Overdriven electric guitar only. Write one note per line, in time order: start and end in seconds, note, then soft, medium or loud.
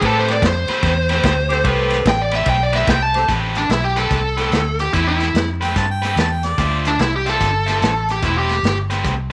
0.01 0.32 A3 medium
0.01 0.32 C4 loud
0.01 0.33 G4 loud
0.01 0.33 B4 loud
0.69 0.92 A3 medium
0.69 0.92 C4 loud
0.69 0.92 G4 medium
0.69 0.92 B4 medium
1.10 1.33 A3 medium
1.10 1.33 C4 loud
1.10 1.32 G4 medium
1.10 1.32 B4 loud
1.64 1.96 A3 loud
1.64 1.96 C4 loud
1.64 1.96 G4 loud
1.64 1.96 B4 loud
2.32 2.56 A3 medium
2.32 2.55 C4 medium
2.32 2.55 G4 medium
2.32 2.55 B4 loud
2.73 2.96 A3 medium
2.73 2.96 C4 medium
2.73 2.96 G4 loud
2.73 2.96 B4 medium
3.28 3.59 A3 medium
3.28 3.60 C4 medium
3.28 3.60 G4 medium
3.28 3.60 B4 medium
3.96 4.20 A3 medium
3.96 4.19 C4 medium
3.96 4.19 G4 medium
3.96 4.19 B4 medium
4.37 4.61 A3 medium
4.37 4.60 C4 medium
4.37 4.60 G4 medium
4.37 4.60 B4 medium
4.94 5.24 A3 medium
4.94 5.24 C4 medium
4.94 5.25 G4 medium
4.94 5.25 B4 medium
5.61 5.84 A3 medium
5.61 5.84 C4 medium
5.61 5.84 G4 medium
5.61 5.84 B4 medium
6.02 6.25 A3 medium
6.02 6.25 C4 medium
6.02 6.25 G4 medium
6.02 6.25 B4 medium
6.58 6.89 D4 medium
6.58 6.89 F4 medium
6.58 6.89 C5 medium
6.58 6.89 E5 medium
7.26 7.49 D4 medium
7.26 7.49 F4 medium
7.26 7.49 C5 medium
7.26 7.48 E5 medium
7.66 7.90 D4 medium
7.66 7.90 F4 medium
7.66 7.89 C5 medium
7.66 7.89 E5 medium
8.23 8.53 A3 medium
8.23 8.54 C4 medium
8.23 8.54 G4 medium
8.23 8.54 B4 medium
8.90 9.13 A3 medium
8.90 9.13 C4 medium
8.90 9.13 G4 medium
8.90 9.12 B4 medium